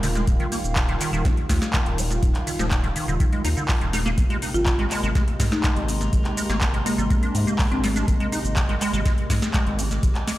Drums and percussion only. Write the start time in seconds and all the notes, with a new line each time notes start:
0.03 snare, open hi-hat, shaker
0.15 snare, closed hi-hat, shaker
0.27 kick, closed hi-hat, shaker
0.40 closed hi-hat
0.52 open hi-hat, shaker
0.64 closed hi-hat, shaker
0.76 kick, clap, closed hi-hat, shaker
0.89 closed hi-hat
1.00 clap, open hi-hat, shaker
1.13 closed hi-hat, shaker
1.25 kick, snare, closed hi-hat, shaker
1.37 closed hi-hat
1.49 kick, snare, open hi-hat, shaker
1.62 snare, closed hi-hat, shaker
1.73 kick, clap, closed hi-hat, shaker
1.86 closed hi-hat
1.98 open hi-hat, shaker
2.11 snare, closed hi-hat, shaker
2.23 kick, closed hi-hat, shaker
2.34 clap, closed hi-hat
2.47 open hi-hat, shaker
2.59 snare, closed hi-hat, shaker
2.71 kick, clap, closed hi-hat, shaker
2.84 closed hi-hat
2.96 open hi-hat, shaker
3.08 closed hi-hat, shaker
3.20 kick, closed hi-hat, shaker
3.32 closed hi-hat
3.45 open hi-hat, shaker
3.57 closed hi-hat, shaker
3.68 kick, clap, open hi-hat, shaker
3.81 closed hi-hat
3.93 snare, open hi-hat, shaker
4.06 snare, closed hi-hat, shaker
4.18 kick, closed hi-hat, shaker
4.30 closed hi-hat
4.42 open hi-hat, shaker
4.54 closed hi-hat, shaker
4.66 kick, clap, closed hi-hat, shaker
4.79 closed hi-hat
4.90 clap, open hi-hat, shaker
5.03 closed hi-hat, shaker
5.15 kick, snare, closed hi-hat, shaker
5.28 closed hi-hat
5.40 kick, snare, open hi-hat, shaker
5.52 snare, closed hi-hat, shaker
5.64 kick, clap, closed hi-hat, shaker
5.76 closed hi-hat
5.88 open hi-hat, shaker
6.01 snare, closed hi-hat, shaker
6.13 kick, closed hi-hat, shaker
6.25 clap, closed hi-hat
6.37 open hi-hat, shaker
6.50 snare, closed hi-hat, shaker
6.61 kick, clap, closed hi-hat, shaker
6.74 closed hi-hat
6.86 open hi-hat, shaker
6.98 closed hi-hat, shaker
7.10 kick, closed hi-hat, shaker
7.23 closed hi-hat
7.35 open hi-hat, shaker
7.47 closed hi-hat, shaker
7.59 kick, clap, open hi-hat, shaker
7.72 closed hi-hat
7.84 snare, open hi-hat, shaker
7.96 snare, closed hi-hat, shaker
8.08 kick, closed hi-hat, shaker
8.20 closed hi-hat
8.32 open hi-hat, shaker
8.45 closed hi-hat, shaker
8.56 kick, clap, closed hi-hat, shaker
8.69 closed hi-hat
8.81 clap, open hi-hat, shaker
8.93 closed hi-hat, shaker
9.05 kick, snare, closed hi-hat, shaker
9.18 closed hi-hat
9.30 kick, snare, open hi-hat, shaker
9.42 snare, closed hi-hat, shaker
9.54 kick, clap, closed hi-hat, shaker
9.67 closed hi-hat
9.79 open hi-hat, shaker
9.91 snare, closed hi-hat, shaker
10.03 kick, closed hi-hat, shaker
10.15 clap, closed hi-hat
10.27 snare, open hi-hat, shaker